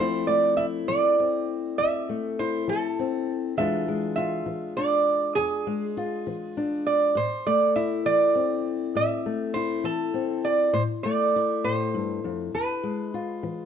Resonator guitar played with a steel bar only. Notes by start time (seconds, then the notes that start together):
Already playing: C5
0.27 D5
0.57 E5
0.88 D5
1.78 E5
2.39 C5
2.69 A4
3.58 E5
4.16 E5
4.77 D5
5.35 G#4
6.87 D5
7.17 C5
7.47 D5
7.76 E5
8.06 D5
8.97 E5
9.54 C5
9.85 A4
10.45 D5
10.74 C5
11.03 D5
11.64 C5
12.55 B4